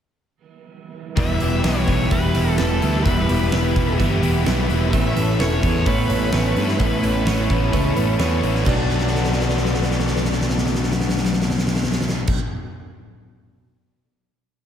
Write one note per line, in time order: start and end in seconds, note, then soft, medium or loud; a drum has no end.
1.16 1.37 E1 medium
1.16 1.63 E3 medium
1.16 1.64 G3 loud
1.16 2.35 G3 medium
1.16 1.65 B3 loud
1.16 1.66 E4 loud
1.16 4.89 G4 medium
1.16 1.65 B4 medium
1.16 4.89 E5 medium
1.16 1.64 E5 loud
1.16 6.76 B5 medium
1.16 kick loud
1.16 open hi-hat medium
1.40 1.61 E1 medium
1.40 2.10 G4 medium
1.40 open hi-hat medium
1.63 1.84 B1 medium
1.63 2.11 E3 medium
1.63 2.11 G3 medium
1.63 2.58 B3 medium
1.63 2.13 B3 medium
1.63 2.14 E4 medium
1.63 2.12 B4 medium
1.63 2.13 C#5 loud
1.63 snare loud
1.63 open hi-hat medium
1.87 2.08 B1 medium
1.87 2.35 E4 medium
1.87 kick medium
1.87 open hi-hat medium
2.11 2.32 E1 medium
2.11 2.58 E3 medium
2.11 2.37 G3 medium
2.11 2.36 B3 medium
2.11 2.35 E4 medium
2.11 3.28 G4 medium
2.11 2.34 B4 loud
2.11 kick medium
2.11 open hi-hat medium
2.34 2.55 E1 medium
2.34 2.58 G3 medium
2.34 2.60 B3 medium
2.34 2.61 E4 medium
2.34 2.82 E4 medium
2.34 2.60 B4 medium
2.34 open hi-hat medium
2.58 2.79 E1 medium
2.58 3.05 E3 medium
2.58 2.83 G3 medium
2.58 3.53 B3 medium
2.58 2.83 B3 medium
2.58 2.81 E4 medium
2.58 3.04 A4 medium
2.58 3.06 B4 medium
2.58 snare loud
2.58 open hi-hat medium
2.81 3.03 D2 medium
2.81 3.05 G3 medium
2.81 3.07 B3 medium
2.81 3.08 E4 medium
2.81 3.76 E4 medium
2.81 open hi-hat soft
3.05 3.26 E1 medium
3.05 3.52 E3 medium
3.05 4.23 G3 medium
3.05 3.52 G3 medium
3.05 3.53 B3 medium
3.05 3.55 E4 loud
3.05 3.52 B4 medium
3.05 kick loud
3.05 open hi-hat medium
3.29 3.49 E1 medium
3.29 3.99 G4 medium
3.29 open hi-hat medium
3.52 3.73 E1 medium
3.52 3.98 E3 medium
3.52 3.98 G3 medium
3.52 4.46 B3 medium
3.52 4.00 B3 medium
3.52 4.01 E4 medium
3.52 4.00 B4 medium
3.52 snare loud
3.52 open hi-hat medium
3.76 3.96 E1 medium
3.76 4.22 E4 medium
3.76 kick medium
3.76 open hi-hat medium
3.99 4.20 G1 medium
3.99 4.44 E3 medium
3.99 4.24 G3 medium
3.99 4.23 B3 medium
3.99 4.21 E4 medium
3.99 4.93 G4 medium
3.99 4.21 B4 loud
3.99 kick medium
3.99 open hi-hat medium
4.21 4.43 E1 medium
4.21 4.45 G3 medium
4.21 4.46 B3 medium
4.21 4.47 E4 medium
4.21 4.70 E4 medium
4.21 4.46 B4 medium
4.21 open hi-hat medium
4.44 4.66 B1 loud
4.44 4.92 E3 medium
4.44 4.70 G3 medium
4.44 5.20 B3 medium
4.44 4.70 B3 medium
4.44 4.68 E4 medium
4.44 4.93 B4 medium
4.44 snare loud
4.44 open hi-hat medium
4.68 4.90 E1 medium
4.68 4.93 G3 medium
4.68 4.94 B3 medium
4.68 4.95 E4 medium
4.68 5.63 E4 medium
4.68 open hi-hat soft
4.92 5.13 A1 medium
4.92 6.78 A2 medium
4.92 5.37 E3 loud
4.92 6.10 E3 medium
4.92 5.39 A3 loud
4.92 5.39 B3 medium
4.92 5.40 C#4 loud
4.92 5.41 E4 loud
4.92 8.63 A4 medium
4.92 5.40 B4 medium
4.92 8.63 C#5 medium
4.92 5.41 C#5 medium
4.92 5.40 E5 loud
4.92 kick loud
4.92 open hi-hat medium
5.15 5.36 A1 loud
5.15 5.86 A4 medium
5.15 open hi-hat medium
5.38 5.60 E1 medium
5.38 5.84 E3 medium
5.38 5.86 A3 medium
5.38 5.86 B3 medium
5.38 6.33 B3 medium
5.38 5.86 C#4 medium
5.38 5.87 E4 medium
5.38 5.87 B4 medium
5.38 5.87 C#5 medium
5.38 snare loud
5.38 open hi-hat medium
5.63 5.83 E2 medium
5.63 6.08 C#4 medium
5.63 kick medium
5.63 open hi-hat medium
5.85 6.07 A1 medium
5.85 6.31 E3 medium
5.85 6.11 A3 medium
5.85 6.32 B3 medium
5.85 6.09 C#4 medium
5.85 6.07 E4 medium
5.85 7.03 A4 medium
5.85 6.10 B4 loud
5.85 6.08 C#5 loud
5.85 kick medium
5.85 open hi-hat medium
6.08 6.30 A1 medium
6.08 6.33 A3 medium
6.08 6.56 C#4 medium
6.08 6.33 C#4 medium
6.08 6.34 E4 medium
6.08 6.33 B4 medium
6.08 6.33 C#5 medium
6.08 open hi-hat medium
6.32 6.53 A1 medium
6.32 6.78 E3 medium
6.32 6.57 A3 medium
6.32 6.78 B3 medium
6.32 7.26 B3 medium
6.32 6.55 C#4 medium
6.32 6.54 E4 medium
6.32 6.79 B4 medium
6.32 6.80 C#5 medium
6.32 snare loud
6.32 open hi-hat medium
6.55 6.77 G2 medium
6.55 6.79 A3 soft
6.55 6.80 C#4 medium
6.55 7.49 C#4 medium
6.55 6.80 E4 medium
6.55 open hi-hat medium
6.68 snare soft
6.78 7.00 A1 loud
6.78 7.49 A2 medium
6.78 7.24 E3 loud
6.78 7.97 E3 medium
6.78 7.25 A3 loud
6.78 7.24 B3 medium
6.78 7.26 C#4 loud
6.78 7.27 E4 loud
6.78 7.26 B4 medium
6.78 7.26 C#5 medium
6.78 8.64 A5 medium
6.78 kick loud
6.78 open hi-hat medium
7.03 7.23 A1 medium
7.03 7.72 A4 medium
7.03 open hi-hat medium
7.25 7.46 A1 medium
7.25 7.70 E3 medium
7.25 7.71 A3 medium
7.25 7.72 B3 medium
7.25 8.20 B3 medium
7.25 7.73 C#4 medium
7.25 7.74 E4 medium
7.25 7.73 B4 medium
7.25 7.73 C#5 medium
7.25 snare loud
7.25 open hi-hat medium
7.50 7.70 A1 medium
7.50 7.95 C#4 medium
7.50 kick medium
7.50 open hi-hat medium
7.71 7.93 C#2 medium
7.71 8.17 E3 medium
7.71 7.97 A3 medium
7.71 8.17 B3 medium
7.71 7.96 C#4 medium
7.71 7.94 E4 medium
7.71 8.67 A4 medium
7.71 7.96 B4 loud
7.71 7.95 C#5 medium
7.71 kick medium
7.71 open hi-hat medium
7.95 8.16 A1 medium
7.95 8.18 A3 medium
7.95 8.42 C#4 medium
7.95 8.19 C#4 medium
7.95 8.20 E4 medium
7.95 8.19 B4 medium
7.95 8.19 C#5 medium
7.95 open hi-hat medium
8.18 8.40 E2 medium
8.18 8.64 E3 medium
8.18 8.44 A3 medium
8.18 8.64 B3 medium
8.18 8.42 C#4 medium
8.18 8.41 E4 medium
8.18 8.65 B4 medium
8.18 8.65 C#5 medium
8.18 snare loud
8.18 open hi-hat medium
8.42 8.63 A1 medium
8.42 8.66 A3 medium
8.42 8.67 C#4 medium
8.42 8.65 C#4 medium
8.42 8.64 E4 medium
8.42 open hi-hat medium
8.55 snare soft
8.65 12.33 B1 medium
8.65 12.37 B2 loud
8.65 12.38 F#3 loud
8.65 12.37 A3 medium
8.65 12.38 A3 medium
8.65 12.33 B3 medium
8.65 12.39 B3 loud
8.65 12.38 D4 loud
8.65 12.38 F#4 medium
8.65 12.33 A4 medium
8.65 12.33 D5 medium
8.65 kick loud
8.65 crash medium
8.69 12.39 D4 loud
8.69 12.39 F#4 loud
8.69 12.39 D5 medium
8.90 snare soft
8.99 snare soft
9.07 snare soft
9.15 snare medium
9.24 snare medium
9.32 snare medium
9.41 snare medium
9.49 snare medium
9.57 snare medium
9.65 snare medium
9.74 snare medium
9.82 snare medium
9.91 snare medium
9.99 snare medium
10.07 snare medium
10.16 snare medium
10.24 snare medium
10.32 snare medium
10.41 snare medium
10.49 snare medium
10.58 snare medium
10.66 snare medium
10.75 snare medium
10.83 snare medium
10.92 snare medium
11.01 snare medium
11.09 snare medium
11.17 snare medium
11.25 snare medium
11.33 snare medium
11.42 snare medium
11.50 snare medium
11.58 snare medium
11.67 snare medium
11.75 snare medium
11.84 snare medium
11.92 snare medium
12.01 snare medium
12.09 snare medium
12.27 kick loud
12.27 crash medium